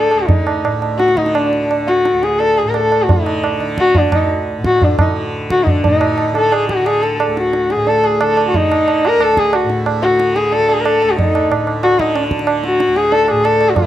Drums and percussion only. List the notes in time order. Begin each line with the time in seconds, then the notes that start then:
0.11 tabla na
0.29 tabla tin, tabla ge
0.47 tabla na
0.65 tabla na
0.82 tabla na
0.99 tabla te
1.08 tabla te
1.17 tabla ke
1.26 tabla te
1.35 tabla na
1.53 tabla te
1.71 tabla na
1.88 tabla te
2.05 tabla te
2.23 tabla te
2.40 tabla tin
2.57 tabla na
2.74 tabla na
2.92 tabla na
3.09 tabla tin, tabla ge
3.26 tabla na
3.44 tabla na
3.60 tabla na
3.78 tabla ke
3.95 tabla tin, tabla ge
4.12 tabla na, tabla ge
4.64 tabla ke
4.82 tabla tin, tabla ge
4.99 tabla na, tabla ge
5.50 tabla ke
5.67 tabla tin, tabla ge
5.84 tabla tin, tabla ge
6.01 tabla na
6.18 tabla na
6.35 tabla na
6.52 tabla na
6.69 tabla ke
6.86 tabla na
7.03 tabla te
7.20 tabla na
7.37 tabla te
7.53 tabla te
7.70 tabla te
7.87 tabla tin
8.04 tabla na
8.21 tabla na
8.37 tabla na
8.54 tabla tin, tabla ge
8.72 tabla na
8.88 tabla na
9.05 tabla na
9.20 tabla na
9.37 tabla ke
9.53 tabla na
9.70 tabla te
9.86 tabla na
10.03 tabla te
10.20 tabla te
10.36 tabla te
10.52 tabla tin
10.69 tabla na
10.85 tabla na
11.02 tabla na
11.19 tabla tin, tabla ge
11.35 tabla na
11.52 tabla na
11.67 tabla na
11.83 tabla na
11.99 tabla ke
12.16 tabla na
12.31 tabla ke
12.39 tabla te
12.47 tabla na
12.64 tabla te
12.80 tabla te
12.96 tabla te
13.12 tabla tin
13.28 tabla na
13.45 tabla na
13.61 tabla na
13.76 tabla tin, tabla ge